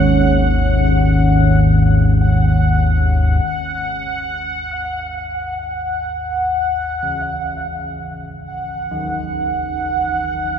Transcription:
0, 0, Header, 1, 5, 480
1, 0, Start_track
1, 0, Tempo, 500000
1, 10164, End_track
2, 0, Start_track
2, 0, Title_t, "Synth texture"
2, 0, Program_c, 0, 99
2, 0, Note_on_c, 0, 78, 67
2, 3290, Note_off_c, 0, 78, 0
2, 3302, Note_on_c, 0, 78, 73
2, 10164, Note_off_c, 0, 78, 0
2, 10164, End_track
3, 0, Start_track
3, 0, Title_t, "Ambient pad"
3, 0, Program_c, 1, 92
3, 0, Note_on_c, 1, 61, 63
3, 0, Note_on_c, 1, 68, 73
3, 0, Note_on_c, 1, 73, 80
3, 3309, Note_off_c, 1, 61, 0
3, 3316, Note_off_c, 1, 73, 0
3, 3319, Note_off_c, 1, 68, 0
3, 10164, End_track
4, 0, Start_track
4, 0, Title_t, "Church bells"
4, 0, Program_c, 2, 14
4, 6748, Note_on_c, 2, 49, 71
4, 8556, Note_on_c, 2, 51, 67
4, 8786, Note_off_c, 2, 49, 0
4, 10164, Note_off_c, 2, 51, 0
4, 10164, End_track
5, 0, Start_track
5, 0, Title_t, "Synth drone"
5, 0, Program_c, 3, 95
5, 0, Note_on_c, 3, 32, 70
5, 0, Note_on_c, 3, 39, 61
5, 3294, Note_off_c, 3, 39, 0
5, 3296, Note_off_c, 3, 32, 0
5, 3305, Note_on_c, 3, 39, 74
5, 3308, Note_on_c, 3, 32, 73
5, 10164, Note_off_c, 3, 32, 0
5, 10164, Note_off_c, 3, 39, 0
5, 10164, End_track
0, 0, End_of_file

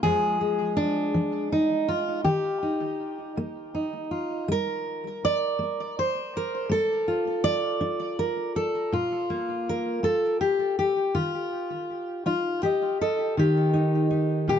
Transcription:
0, 0, Header, 1, 2, 480
1, 0, Start_track
1, 0, Tempo, 741656
1, 19, Time_signature, 6, 3, 24, 8
1, 9445, End_track
2, 0, Start_track
2, 0, Title_t, "Steel-string acoustic guitar"
2, 0, Program_c, 0, 25
2, 19, Note_on_c, 0, 68, 95
2, 22, Note_on_c, 0, 41, 69
2, 27, Note_on_c, 0, 53, 49
2, 30, Note_on_c, 0, 56, 47
2, 257, Note_off_c, 0, 56, 0
2, 265, Note_on_c, 0, 56, 39
2, 452, Note_off_c, 0, 41, 0
2, 496, Note_on_c, 0, 62, 97
2, 737, Note_off_c, 0, 53, 0
2, 740, Note_on_c, 0, 53, 62
2, 977, Note_off_c, 0, 62, 0
2, 978, Note_off_c, 0, 68, 0
2, 986, Note_on_c, 0, 63, 76
2, 1171, Note_off_c, 0, 53, 0
2, 1220, Note_on_c, 0, 65, 78
2, 1222, Note_off_c, 0, 63, 0
2, 1450, Note_off_c, 0, 65, 0
2, 1453, Note_on_c, 0, 67, 84
2, 1455, Note_on_c, 0, 51, 68
2, 1460, Note_off_c, 0, 56, 0
2, 1699, Note_on_c, 0, 63, 40
2, 1888, Note_off_c, 0, 51, 0
2, 2183, Note_on_c, 0, 58, 60
2, 2418, Note_off_c, 0, 63, 0
2, 2424, Note_on_c, 0, 63, 44
2, 2612, Note_off_c, 0, 58, 0
2, 2654, Note_off_c, 0, 67, 0
2, 2660, Note_on_c, 0, 65, 42
2, 2871, Note_off_c, 0, 63, 0
2, 2898, Note_off_c, 0, 65, 0
2, 2901, Note_on_c, 0, 55, 65
2, 2923, Note_on_c, 0, 70, 89
2, 3330, Note_off_c, 0, 55, 0
2, 3396, Note_on_c, 0, 74, 105
2, 3617, Note_on_c, 0, 58, 51
2, 3865, Note_off_c, 0, 74, 0
2, 3869, Note_off_c, 0, 70, 0
2, 3876, Note_on_c, 0, 72, 92
2, 4048, Note_off_c, 0, 58, 0
2, 4121, Note_on_c, 0, 70, 82
2, 4332, Note_on_c, 0, 57, 71
2, 4343, Note_off_c, 0, 70, 0
2, 4345, Note_off_c, 0, 72, 0
2, 4346, Note_on_c, 0, 69, 96
2, 4581, Note_on_c, 0, 65, 45
2, 4766, Note_off_c, 0, 57, 0
2, 4815, Note_on_c, 0, 74, 101
2, 5053, Note_on_c, 0, 62, 61
2, 5298, Note_off_c, 0, 69, 0
2, 5301, Note_on_c, 0, 70, 84
2, 5486, Note_off_c, 0, 62, 0
2, 5538, Note_off_c, 0, 70, 0
2, 5541, Note_on_c, 0, 69, 79
2, 5775, Note_off_c, 0, 74, 0
2, 5776, Note_on_c, 0, 46, 70
2, 5778, Note_off_c, 0, 69, 0
2, 5782, Note_off_c, 0, 65, 0
2, 5782, Note_on_c, 0, 65, 75
2, 6019, Note_on_c, 0, 58, 46
2, 6207, Note_off_c, 0, 46, 0
2, 6274, Note_on_c, 0, 70, 83
2, 6489, Note_off_c, 0, 58, 0
2, 6491, Note_on_c, 0, 58, 55
2, 6495, Note_off_c, 0, 70, 0
2, 6498, Note_on_c, 0, 69, 83
2, 6733, Note_off_c, 0, 69, 0
2, 6736, Note_on_c, 0, 67, 80
2, 6738, Note_off_c, 0, 65, 0
2, 6925, Note_off_c, 0, 58, 0
2, 6974, Note_off_c, 0, 67, 0
2, 6982, Note_on_c, 0, 67, 80
2, 7214, Note_on_c, 0, 51, 65
2, 7214, Note_on_c, 0, 65, 71
2, 7218, Note_off_c, 0, 67, 0
2, 7647, Note_off_c, 0, 51, 0
2, 7929, Note_off_c, 0, 65, 0
2, 7933, Note_on_c, 0, 63, 65
2, 7937, Note_on_c, 0, 65, 76
2, 8173, Note_on_c, 0, 67, 73
2, 8182, Note_off_c, 0, 65, 0
2, 8185, Note_on_c, 0, 75, 45
2, 8366, Note_off_c, 0, 63, 0
2, 8414, Note_off_c, 0, 67, 0
2, 8415, Note_off_c, 0, 75, 0
2, 8423, Note_on_c, 0, 69, 80
2, 8425, Note_on_c, 0, 75, 41
2, 8630, Note_off_c, 0, 75, 0
2, 8655, Note_on_c, 0, 51, 66
2, 8659, Note_off_c, 0, 69, 0
2, 8668, Note_on_c, 0, 67, 88
2, 8890, Note_on_c, 0, 63, 62
2, 9122, Note_off_c, 0, 63, 0
2, 9129, Note_on_c, 0, 63, 45
2, 9369, Note_on_c, 0, 46, 55
2, 9371, Note_off_c, 0, 67, 0
2, 9379, Note_on_c, 0, 67, 91
2, 9445, Note_off_c, 0, 46, 0
2, 9445, Note_off_c, 0, 51, 0
2, 9445, Note_off_c, 0, 63, 0
2, 9445, Note_off_c, 0, 67, 0
2, 9445, End_track
0, 0, End_of_file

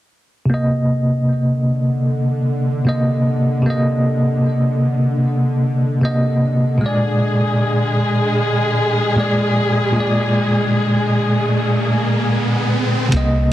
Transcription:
0, 0, Header, 1, 7, 480
1, 0, Start_track
1, 0, Key_signature, -3, "minor"
1, 0, Tempo, 789474
1, 298, Time_signature, 4, 2, 24, 8
1, 8226, End_track
2, 0, Start_track
2, 0, Title_t, "String section"
2, 0, Program_c, 0, 48
2, 4137, Note_on_c, 0, 68, 79
2, 4141, Note_on_c, 0, 56, 73
2, 7988, Note_off_c, 0, 68, 0
2, 7990, Note_off_c, 0, 56, 0
2, 8226, End_track
3, 0, Start_track
3, 0, Title_t, "Tine electric piano"
3, 0, Program_c, 1, 4
3, 276, Note_on_c, 1, 48, 75
3, 302, Note_on_c, 1, 58, 69
3, 328, Note_on_c, 1, 75, 79
3, 394, Control_c, 1, 64, 127
3, 1701, Note_off_c, 1, 48, 0
3, 1714, Note_off_c, 1, 58, 0
3, 1727, Note_off_c, 1, 75, 0
3, 1733, Note_on_c, 1, 48, 67
3, 1744, Note_on_c, 1, 58, 68
3, 1755, Note_on_c, 1, 75, 73
3, 2189, Note_off_c, 1, 48, 0
3, 2195, Note_off_c, 1, 58, 0
3, 2200, Note_off_c, 1, 75, 0
3, 2200, Note_on_c, 1, 48, 75
3, 2226, Note_on_c, 1, 58, 74
3, 2250, Note_on_c, 1, 75, 87
3, 3623, Note_off_c, 1, 48, 0
3, 3636, Note_off_c, 1, 58, 0
3, 3648, Note_off_c, 1, 75, 0
3, 3657, Note_on_c, 1, 48, 72
3, 3666, Note_on_c, 1, 58, 64
3, 3678, Note_on_c, 1, 75, 81
3, 4111, Note_off_c, 1, 48, 0
3, 4116, Note_off_c, 1, 58, 0
3, 4121, Note_on_c, 1, 46, 76
3, 4122, Note_off_c, 1, 75, 0
3, 4141, Note_on_c, 1, 56, 69
3, 4146, Control_c, 1, 64, 0
3, 4170, Note_on_c, 1, 74, 89
3, 4257, Control_c, 1, 64, 127
3, 5543, Note_off_c, 1, 46, 0
3, 5553, Note_off_c, 1, 56, 0
3, 5568, Note_off_c, 1, 74, 0
3, 5568, Note_on_c, 1, 46, 74
3, 5581, Note_on_c, 1, 56, 71
3, 5593, Note_on_c, 1, 74, 82
3, 6027, Note_off_c, 1, 46, 0
3, 6033, Note_off_c, 1, 56, 0
3, 6033, Note_on_c, 1, 46, 80
3, 6039, Note_off_c, 1, 74, 0
3, 6058, Note_on_c, 1, 56, 77
3, 6082, Note_on_c, 1, 74, 90
3, 7459, Note_off_c, 1, 46, 0
3, 7472, Note_off_c, 1, 56, 0
3, 7484, Note_off_c, 1, 74, 0
3, 7958, Note_on_c, 1, 48, 79
3, 7984, Note_on_c, 1, 58, 74
3, 7985, Control_c, 1, 64, 0
3, 8006, Note_on_c, 1, 75, 90
3, 8081, Control_c, 1, 64, 127
3, 8226, Note_off_c, 1, 48, 0
3, 8226, Note_off_c, 1, 58, 0
3, 8226, Note_off_c, 1, 75, 0
3, 8226, End_track
4, 0, Start_track
4, 0, Title_t, "Synth drone"
4, 0, Program_c, 2, 95
4, 305, Note_on_c, 2, 50, 71
4, 7992, Note_off_c, 2, 50, 0
4, 8226, End_track
5, 0, Start_track
5, 0, Title_t, "Sub bass"
5, 0, Program_c, 3, 38
5, 7978, Note_on_c, 3, 36, 97
5, 8226, Note_off_c, 3, 36, 0
5, 8226, End_track
6, 0, Start_track
6, 0, Title_t, "Riser"
6, 0, Program_c, 4, 103
6, 4136, Note_on_c, 4, 60, 64
6, 7977, Note_off_c, 4, 60, 0
6, 8226, End_track
7, 0, Start_track
7, 0, Title_t, "Drums"
7, 7978, Note_on_c, 9, 36, 106
7, 7978, Note_on_c, 9, 42, 86
7, 8039, Note_off_c, 9, 36, 0
7, 8039, Note_off_c, 9, 42, 0
7, 8226, End_track
0, 0, End_of_file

